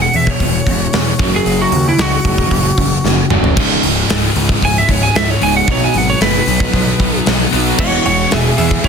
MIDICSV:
0, 0, Header, 1, 6, 480
1, 0, Start_track
1, 0, Tempo, 527241
1, 1330, Time_signature, 4, 2, 24, 8
1, 8087, End_track
2, 0, Start_track
2, 0, Title_t, "Lead electric guitar"
2, 0, Program_c, 0, 29
2, 18, Note_on_c, 0, 78, 84
2, 131, Note_off_c, 0, 78, 0
2, 144, Note_on_c, 0, 76, 97
2, 270, Note_off_c, 0, 76, 0
2, 270, Note_on_c, 0, 73, 103
2, 1191, Note_off_c, 0, 73, 0
2, 1239, Note_on_c, 0, 68, 79
2, 1458, Note_off_c, 0, 68, 0
2, 1470, Note_on_c, 0, 66, 87
2, 1693, Note_off_c, 0, 66, 0
2, 1717, Note_on_c, 0, 64, 85
2, 1830, Note_off_c, 0, 64, 0
2, 1830, Note_on_c, 0, 66, 105
2, 3224, Note_off_c, 0, 66, 0
2, 4232, Note_on_c, 0, 80, 105
2, 4338, Note_off_c, 0, 80, 0
2, 4353, Note_on_c, 0, 76, 82
2, 4468, Note_off_c, 0, 76, 0
2, 4468, Note_on_c, 0, 73, 93
2, 4576, Note_off_c, 0, 73, 0
2, 4579, Note_on_c, 0, 80, 80
2, 4692, Note_off_c, 0, 80, 0
2, 4699, Note_on_c, 0, 76, 86
2, 4828, Note_off_c, 0, 76, 0
2, 4828, Note_on_c, 0, 73, 84
2, 4937, Note_off_c, 0, 73, 0
2, 4945, Note_on_c, 0, 80, 100
2, 5055, Note_off_c, 0, 80, 0
2, 5068, Note_on_c, 0, 78, 88
2, 5177, Note_off_c, 0, 78, 0
2, 5202, Note_on_c, 0, 73, 89
2, 5304, Note_off_c, 0, 73, 0
2, 5317, Note_on_c, 0, 80, 91
2, 5440, Note_off_c, 0, 80, 0
2, 5440, Note_on_c, 0, 78, 102
2, 5543, Note_off_c, 0, 78, 0
2, 5550, Note_on_c, 0, 73, 95
2, 5658, Note_off_c, 0, 73, 0
2, 5664, Note_on_c, 0, 71, 94
2, 6591, Note_off_c, 0, 71, 0
2, 7099, Note_on_c, 0, 73, 88
2, 7103, Note_on_c, 0, 78, 88
2, 7322, Note_off_c, 0, 73, 0
2, 7326, Note_off_c, 0, 78, 0
2, 7333, Note_on_c, 0, 73, 89
2, 7337, Note_on_c, 0, 78, 98
2, 7557, Note_off_c, 0, 73, 0
2, 7569, Note_off_c, 0, 78, 0
2, 7582, Note_on_c, 0, 68, 81
2, 7590, Note_on_c, 0, 76, 98
2, 7796, Note_off_c, 0, 68, 0
2, 7801, Note_off_c, 0, 76, 0
2, 7807, Note_on_c, 0, 68, 88
2, 7812, Note_on_c, 0, 76, 91
2, 8034, Note_off_c, 0, 68, 0
2, 8046, Note_off_c, 0, 76, 0
2, 8046, Note_on_c, 0, 64, 80
2, 8056, Note_on_c, 0, 73, 99
2, 8087, Note_off_c, 0, 64, 0
2, 8087, Note_off_c, 0, 73, 0
2, 8087, End_track
3, 0, Start_track
3, 0, Title_t, "Distorted electric guitar"
3, 0, Program_c, 1, 30
3, 3495, Note_on_c, 1, 49, 81
3, 3729, Note_off_c, 1, 49, 0
3, 3740, Note_on_c, 1, 49, 95
3, 3967, Note_off_c, 1, 49, 0
3, 3978, Note_on_c, 1, 49, 95
3, 4210, Note_off_c, 1, 49, 0
3, 4221, Note_on_c, 1, 49, 101
3, 4449, Note_off_c, 1, 49, 0
3, 4460, Note_on_c, 1, 49, 92
3, 4685, Note_off_c, 1, 49, 0
3, 4696, Note_on_c, 1, 49, 90
3, 4922, Note_off_c, 1, 49, 0
3, 5417, Note_on_c, 1, 59, 80
3, 5655, Note_off_c, 1, 59, 0
3, 5659, Note_on_c, 1, 59, 103
3, 5893, Note_off_c, 1, 59, 0
3, 5903, Note_on_c, 1, 59, 102
3, 6129, Note_off_c, 1, 59, 0
3, 6140, Note_on_c, 1, 59, 106
3, 6371, Note_off_c, 1, 59, 0
3, 6382, Note_on_c, 1, 59, 104
3, 6613, Note_off_c, 1, 59, 0
3, 6624, Note_on_c, 1, 59, 100
3, 6855, Note_off_c, 1, 59, 0
3, 7346, Note_on_c, 1, 52, 74
3, 7573, Note_off_c, 1, 52, 0
3, 7583, Note_on_c, 1, 52, 94
3, 7806, Note_off_c, 1, 52, 0
3, 7817, Note_on_c, 1, 52, 101
3, 8045, Note_off_c, 1, 52, 0
3, 8056, Note_on_c, 1, 52, 97
3, 8087, Note_off_c, 1, 52, 0
3, 8087, End_track
4, 0, Start_track
4, 0, Title_t, "Overdriven electric guitar"
4, 0, Program_c, 2, 29
4, 0, Note_on_c, 2, 40, 80
4, 0, Note_on_c, 2, 47, 88
4, 116, Note_off_c, 2, 40, 0
4, 116, Note_off_c, 2, 47, 0
4, 139, Note_on_c, 2, 40, 73
4, 148, Note_on_c, 2, 47, 85
4, 351, Note_off_c, 2, 40, 0
4, 355, Note_off_c, 2, 47, 0
4, 374, Note_on_c, 2, 40, 76
4, 376, Note_on_c, 2, 47, 79
4, 588, Note_off_c, 2, 40, 0
4, 589, Note_off_c, 2, 47, 0
4, 614, Note_on_c, 2, 40, 72
4, 615, Note_on_c, 2, 47, 76
4, 828, Note_off_c, 2, 40, 0
4, 829, Note_off_c, 2, 47, 0
4, 848, Note_on_c, 2, 40, 79
4, 848, Note_on_c, 2, 47, 84
4, 1065, Note_off_c, 2, 40, 0
4, 1065, Note_off_c, 2, 47, 0
4, 1075, Note_on_c, 2, 42, 75
4, 1083, Note_on_c, 2, 49, 83
4, 1087, Note_on_c, 2, 54, 91
4, 1308, Note_off_c, 2, 42, 0
4, 1312, Note_off_c, 2, 49, 0
4, 1314, Note_off_c, 2, 54, 0
4, 1324, Note_on_c, 2, 42, 92
4, 1333, Note_on_c, 2, 49, 95
4, 1333, Note_on_c, 2, 54, 91
4, 1553, Note_off_c, 2, 42, 0
4, 1557, Note_off_c, 2, 49, 0
4, 1557, Note_off_c, 2, 54, 0
4, 1564, Note_on_c, 2, 42, 69
4, 1570, Note_on_c, 2, 49, 83
4, 1783, Note_off_c, 2, 42, 0
4, 1786, Note_off_c, 2, 49, 0
4, 1801, Note_on_c, 2, 42, 76
4, 1807, Note_on_c, 2, 49, 85
4, 2022, Note_off_c, 2, 42, 0
4, 2024, Note_off_c, 2, 49, 0
4, 2046, Note_on_c, 2, 42, 80
4, 2050, Note_on_c, 2, 49, 80
4, 2264, Note_off_c, 2, 42, 0
4, 2266, Note_off_c, 2, 49, 0
4, 2286, Note_on_c, 2, 42, 70
4, 2289, Note_on_c, 2, 49, 79
4, 2504, Note_off_c, 2, 42, 0
4, 2506, Note_off_c, 2, 49, 0
4, 2530, Note_on_c, 2, 42, 62
4, 2533, Note_on_c, 2, 49, 71
4, 2746, Note_off_c, 2, 42, 0
4, 2747, Note_off_c, 2, 49, 0
4, 2770, Note_on_c, 2, 42, 76
4, 2773, Note_on_c, 2, 49, 86
4, 2986, Note_off_c, 2, 42, 0
4, 2988, Note_off_c, 2, 49, 0
4, 3014, Note_on_c, 2, 42, 82
4, 3020, Note_on_c, 2, 49, 79
4, 3022, Note_on_c, 2, 54, 82
4, 3238, Note_off_c, 2, 42, 0
4, 3241, Note_off_c, 2, 49, 0
4, 3242, Note_off_c, 2, 54, 0
4, 3263, Note_on_c, 2, 37, 89
4, 3271, Note_on_c, 2, 44, 101
4, 3272, Note_on_c, 2, 49, 110
4, 3482, Note_off_c, 2, 37, 0
4, 3486, Note_off_c, 2, 44, 0
4, 3487, Note_off_c, 2, 49, 0
4, 3495, Note_on_c, 2, 37, 64
4, 3499, Note_on_c, 2, 44, 72
4, 3709, Note_off_c, 2, 37, 0
4, 3711, Note_off_c, 2, 44, 0
4, 3735, Note_on_c, 2, 37, 68
4, 3739, Note_on_c, 2, 44, 71
4, 3949, Note_off_c, 2, 37, 0
4, 3951, Note_off_c, 2, 44, 0
4, 3965, Note_on_c, 2, 37, 74
4, 3967, Note_on_c, 2, 44, 81
4, 4184, Note_off_c, 2, 37, 0
4, 4185, Note_off_c, 2, 44, 0
4, 4210, Note_on_c, 2, 37, 67
4, 4212, Note_on_c, 2, 44, 93
4, 4426, Note_off_c, 2, 37, 0
4, 4428, Note_off_c, 2, 44, 0
4, 4452, Note_on_c, 2, 37, 68
4, 4460, Note_on_c, 2, 44, 87
4, 4668, Note_off_c, 2, 37, 0
4, 4671, Note_off_c, 2, 44, 0
4, 4689, Note_on_c, 2, 37, 71
4, 4690, Note_on_c, 2, 44, 94
4, 4906, Note_off_c, 2, 37, 0
4, 4907, Note_off_c, 2, 44, 0
4, 4922, Note_on_c, 2, 37, 79
4, 4929, Note_on_c, 2, 44, 97
4, 4934, Note_on_c, 2, 49, 99
4, 5152, Note_off_c, 2, 37, 0
4, 5156, Note_off_c, 2, 44, 0
4, 5159, Note_off_c, 2, 49, 0
4, 5166, Note_on_c, 2, 47, 97
4, 5174, Note_on_c, 2, 54, 92
4, 5178, Note_on_c, 2, 59, 113
4, 5395, Note_off_c, 2, 47, 0
4, 5399, Note_off_c, 2, 54, 0
4, 5400, Note_off_c, 2, 59, 0
4, 5415, Note_on_c, 2, 47, 75
4, 5415, Note_on_c, 2, 54, 84
4, 5629, Note_off_c, 2, 54, 0
4, 5630, Note_off_c, 2, 47, 0
4, 5652, Note_on_c, 2, 47, 77
4, 5658, Note_on_c, 2, 54, 83
4, 5869, Note_off_c, 2, 47, 0
4, 5871, Note_off_c, 2, 54, 0
4, 5894, Note_on_c, 2, 47, 73
4, 5898, Note_on_c, 2, 54, 87
4, 6109, Note_off_c, 2, 47, 0
4, 6111, Note_off_c, 2, 54, 0
4, 6130, Note_on_c, 2, 47, 73
4, 6133, Note_on_c, 2, 54, 76
4, 6348, Note_off_c, 2, 47, 0
4, 6349, Note_off_c, 2, 54, 0
4, 6358, Note_on_c, 2, 47, 67
4, 6364, Note_on_c, 2, 54, 69
4, 6582, Note_off_c, 2, 47, 0
4, 6585, Note_off_c, 2, 54, 0
4, 6602, Note_on_c, 2, 47, 75
4, 6604, Note_on_c, 2, 54, 93
4, 6824, Note_off_c, 2, 47, 0
4, 6825, Note_off_c, 2, 54, 0
4, 6836, Note_on_c, 2, 47, 87
4, 6840, Note_on_c, 2, 54, 97
4, 6846, Note_on_c, 2, 59, 90
4, 7071, Note_off_c, 2, 47, 0
4, 7073, Note_off_c, 2, 54, 0
4, 7076, Note_off_c, 2, 59, 0
4, 7083, Note_on_c, 2, 40, 89
4, 7090, Note_on_c, 2, 47, 102
4, 7091, Note_on_c, 2, 52, 104
4, 7314, Note_off_c, 2, 40, 0
4, 7315, Note_off_c, 2, 47, 0
4, 7318, Note_off_c, 2, 52, 0
4, 7326, Note_on_c, 2, 47, 76
4, 7328, Note_on_c, 2, 40, 73
4, 7546, Note_off_c, 2, 47, 0
4, 7547, Note_off_c, 2, 40, 0
4, 7564, Note_on_c, 2, 40, 80
4, 7569, Note_on_c, 2, 47, 80
4, 7786, Note_off_c, 2, 40, 0
4, 7788, Note_off_c, 2, 47, 0
4, 7806, Note_on_c, 2, 40, 74
4, 7812, Note_on_c, 2, 47, 77
4, 8026, Note_off_c, 2, 40, 0
4, 8029, Note_off_c, 2, 47, 0
4, 8045, Note_on_c, 2, 40, 80
4, 8049, Note_on_c, 2, 47, 88
4, 8087, Note_off_c, 2, 40, 0
4, 8087, Note_off_c, 2, 47, 0
4, 8087, End_track
5, 0, Start_track
5, 0, Title_t, "Picked electric bass"
5, 0, Program_c, 3, 34
5, 129, Note_on_c, 3, 40, 97
5, 300, Note_off_c, 3, 40, 0
5, 364, Note_on_c, 3, 28, 88
5, 536, Note_off_c, 3, 28, 0
5, 605, Note_on_c, 3, 28, 95
5, 777, Note_off_c, 3, 28, 0
5, 854, Note_on_c, 3, 40, 97
5, 1023, Note_off_c, 3, 40, 0
5, 1086, Note_on_c, 3, 30, 87
5, 1258, Note_off_c, 3, 30, 0
5, 1326, Note_on_c, 3, 30, 87
5, 1498, Note_off_c, 3, 30, 0
5, 1565, Note_on_c, 3, 39, 97
5, 1737, Note_off_c, 3, 39, 0
5, 1807, Note_on_c, 3, 37, 82
5, 1978, Note_off_c, 3, 37, 0
5, 2048, Note_on_c, 3, 30, 97
5, 2219, Note_off_c, 3, 30, 0
5, 2289, Note_on_c, 3, 30, 91
5, 2459, Note_off_c, 3, 30, 0
5, 2528, Note_on_c, 3, 30, 84
5, 2699, Note_off_c, 3, 30, 0
5, 2768, Note_on_c, 3, 30, 97
5, 2939, Note_off_c, 3, 30, 0
5, 3004, Note_on_c, 3, 27, 94
5, 3176, Note_off_c, 3, 27, 0
5, 3247, Note_on_c, 3, 25, 93
5, 3419, Note_off_c, 3, 25, 0
5, 3488, Note_on_c, 3, 25, 93
5, 3659, Note_off_c, 3, 25, 0
5, 3733, Note_on_c, 3, 25, 86
5, 3902, Note_off_c, 3, 25, 0
5, 3971, Note_on_c, 3, 37, 96
5, 4141, Note_off_c, 3, 37, 0
5, 4213, Note_on_c, 3, 25, 90
5, 4382, Note_off_c, 3, 25, 0
5, 4452, Note_on_c, 3, 25, 88
5, 4622, Note_off_c, 3, 25, 0
5, 4693, Note_on_c, 3, 37, 95
5, 4862, Note_off_c, 3, 37, 0
5, 4933, Note_on_c, 3, 25, 91
5, 5103, Note_off_c, 3, 25, 0
5, 5168, Note_on_c, 3, 35, 91
5, 5339, Note_off_c, 3, 35, 0
5, 5411, Note_on_c, 3, 32, 95
5, 5582, Note_off_c, 3, 32, 0
5, 5653, Note_on_c, 3, 30, 90
5, 5823, Note_off_c, 3, 30, 0
5, 5890, Note_on_c, 3, 35, 90
5, 6061, Note_off_c, 3, 35, 0
5, 6129, Note_on_c, 3, 35, 85
5, 6301, Note_off_c, 3, 35, 0
5, 6369, Note_on_c, 3, 35, 90
5, 6541, Note_off_c, 3, 35, 0
5, 6617, Note_on_c, 3, 35, 86
5, 6786, Note_off_c, 3, 35, 0
5, 6860, Note_on_c, 3, 35, 100
5, 7028, Note_off_c, 3, 35, 0
5, 7088, Note_on_c, 3, 28, 99
5, 7260, Note_off_c, 3, 28, 0
5, 7338, Note_on_c, 3, 28, 93
5, 7507, Note_off_c, 3, 28, 0
5, 7578, Note_on_c, 3, 28, 96
5, 7747, Note_off_c, 3, 28, 0
5, 7817, Note_on_c, 3, 40, 92
5, 7986, Note_off_c, 3, 40, 0
5, 8049, Note_on_c, 3, 28, 96
5, 8087, Note_off_c, 3, 28, 0
5, 8087, End_track
6, 0, Start_track
6, 0, Title_t, "Drums"
6, 121, Note_on_c, 9, 46, 60
6, 212, Note_off_c, 9, 46, 0
6, 246, Note_on_c, 9, 36, 91
6, 337, Note_off_c, 9, 36, 0
6, 364, Note_on_c, 9, 46, 64
6, 366, Note_on_c, 9, 36, 79
6, 455, Note_off_c, 9, 46, 0
6, 457, Note_off_c, 9, 36, 0
6, 604, Note_on_c, 9, 46, 56
6, 606, Note_on_c, 9, 36, 72
6, 695, Note_off_c, 9, 46, 0
6, 697, Note_off_c, 9, 36, 0
6, 846, Note_on_c, 9, 46, 75
6, 854, Note_on_c, 9, 38, 105
6, 937, Note_off_c, 9, 46, 0
6, 945, Note_off_c, 9, 38, 0
6, 1087, Note_on_c, 9, 36, 107
6, 1089, Note_on_c, 9, 46, 61
6, 1178, Note_off_c, 9, 36, 0
6, 1180, Note_off_c, 9, 46, 0
6, 1329, Note_on_c, 9, 46, 77
6, 1420, Note_off_c, 9, 46, 0
6, 1566, Note_on_c, 9, 46, 57
6, 1657, Note_off_c, 9, 46, 0
6, 1806, Note_on_c, 9, 46, 85
6, 1815, Note_on_c, 9, 38, 123
6, 1897, Note_off_c, 9, 46, 0
6, 1906, Note_off_c, 9, 38, 0
6, 2047, Note_on_c, 9, 46, 60
6, 2048, Note_on_c, 9, 36, 82
6, 2138, Note_off_c, 9, 46, 0
6, 2139, Note_off_c, 9, 36, 0
6, 2169, Note_on_c, 9, 36, 88
6, 2261, Note_off_c, 9, 36, 0
6, 2286, Note_on_c, 9, 46, 76
6, 2287, Note_on_c, 9, 36, 82
6, 2377, Note_off_c, 9, 46, 0
6, 2379, Note_off_c, 9, 36, 0
6, 2526, Note_on_c, 9, 46, 64
6, 2529, Note_on_c, 9, 36, 72
6, 2617, Note_off_c, 9, 46, 0
6, 2620, Note_off_c, 9, 36, 0
6, 2780, Note_on_c, 9, 38, 59
6, 2871, Note_off_c, 9, 38, 0
6, 3008, Note_on_c, 9, 45, 90
6, 3099, Note_off_c, 9, 45, 0
6, 3131, Note_on_c, 9, 43, 91
6, 3222, Note_off_c, 9, 43, 0
6, 3248, Note_on_c, 9, 49, 97
6, 3250, Note_on_c, 9, 36, 120
6, 3339, Note_off_c, 9, 49, 0
6, 3341, Note_off_c, 9, 36, 0
6, 3488, Note_on_c, 9, 46, 61
6, 3579, Note_off_c, 9, 46, 0
6, 3729, Note_on_c, 9, 46, 88
6, 3737, Note_on_c, 9, 38, 126
6, 3820, Note_off_c, 9, 46, 0
6, 3828, Note_off_c, 9, 38, 0
6, 3966, Note_on_c, 9, 46, 69
6, 4057, Note_off_c, 9, 46, 0
6, 4089, Note_on_c, 9, 36, 89
6, 4180, Note_off_c, 9, 36, 0
6, 4211, Note_on_c, 9, 36, 79
6, 4211, Note_on_c, 9, 46, 77
6, 4302, Note_off_c, 9, 36, 0
6, 4302, Note_off_c, 9, 46, 0
6, 4449, Note_on_c, 9, 46, 55
6, 4450, Note_on_c, 9, 36, 77
6, 4540, Note_off_c, 9, 46, 0
6, 4541, Note_off_c, 9, 36, 0
6, 4692, Note_on_c, 9, 46, 73
6, 4700, Note_on_c, 9, 38, 107
6, 4783, Note_off_c, 9, 46, 0
6, 4791, Note_off_c, 9, 38, 0
6, 4930, Note_on_c, 9, 46, 58
6, 5021, Note_off_c, 9, 46, 0
6, 5169, Note_on_c, 9, 46, 81
6, 5170, Note_on_c, 9, 36, 110
6, 5260, Note_off_c, 9, 46, 0
6, 5261, Note_off_c, 9, 36, 0
6, 5408, Note_on_c, 9, 46, 61
6, 5499, Note_off_c, 9, 46, 0
6, 5653, Note_on_c, 9, 46, 88
6, 5661, Note_on_c, 9, 38, 114
6, 5744, Note_off_c, 9, 46, 0
6, 5752, Note_off_c, 9, 38, 0
6, 5895, Note_on_c, 9, 46, 61
6, 5986, Note_off_c, 9, 46, 0
6, 6012, Note_on_c, 9, 36, 95
6, 6103, Note_off_c, 9, 36, 0
6, 6132, Note_on_c, 9, 36, 88
6, 6136, Note_on_c, 9, 46, 77
6, 6223, Note_off_c, 9, 36, 0
6, 6227, Note_off_c, 9, 46, 0
6, 6371, Note_on_c, 9, 36, 83
6, 6372, Note_on_c, 9, 46, 54
6, 6462, Note_off_c, 9, 36, 0
6, 6463, Note_off_c, 9, 46, 0
6, 6612, Note_on_c, 9, 46, 88
6, 6620, Note_on_c, 9, 38, 113
6, 6703, Note_off_c, 9, 46, 0
6, 6711, Note_off_c, 9, 38, 0
6, 6853, Note_on_c, 9, 46, 68
6, 6944, Note_off_c, 9, 46, 0
6, 7087, Note_on_c, 9, 57, 105
6, 7089, Note_on_c, 9, 36, 112
6, 7178, Note_off_c, 9, 57, 0
6, 7181, Note_off_c, 9, 36, 0
6, 7334, Note_on_c, 9, 46, 54
6, 7425, Note_off_c, 9, 46, 0
6, 7567, Note_on_c, 9, 46, 90
6, 7575, Note_on_c, 9, 38, 124
6, 7658, Note_off_c, 9, 46, 0
6, 7666, Note_off_c, 9, 38, 0
6, 7810, Note_on_c, 9, 46, 68
6, 7901, Note_off_c, 9, 46, 0
6, 7931, Note_on_c, 9, 36, 92
6, 8022, Note_off_c, 9, 36, 0
6, 8048, Note_on_c, 9, 46, 78
6, 8051, Note_on_c, 9, 36, 87
6, 8087, Note_off_c, 9, 36, 0
6, 8087, Note_off_c, 9, 46, 0
6, 8087, End_track
0, 0, End_of_file